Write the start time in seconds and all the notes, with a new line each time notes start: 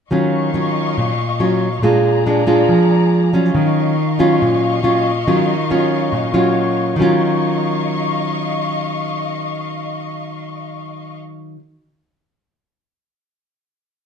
0.11 D#3 F#3 C#4 F4 D#5 F5 C#6
0.54 F#3 C#4 F4
0.98 A#2
1.40 F#3 C#4 F4
1.81 A#2 G#3 D4 F4 G#4 D5 A#5
2.26 G#3 D4 F4
2.47 G#3 D4 F4
2.69 F3
3.33 F#3 C#4 F4
3.55 D#3 D#5 F5 C#6
4.19 F#3 C#4 F4
4.42 A#2
4.83 F#3 C#4 F4
5.28 D#3 F#3 C#4 F4
5.70 F#3 C#4 F4
6.12 A#2
6.34 F#3 C#4 F4
6.95 D#3 F#3 D#5 F5 C#6
7.00 C#4 F4